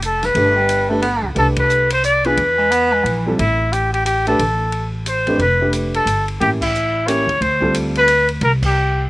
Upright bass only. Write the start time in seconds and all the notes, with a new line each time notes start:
Already playing: F1
0.35 G1
1.23 C#2
1.36 C2
2.37 E2
3.04 A#1
3.39 A1
4.39 A1
5.39 F1
6.06 G1
6.41 A1
7.27 D#2
7.41 D2
8.41 C2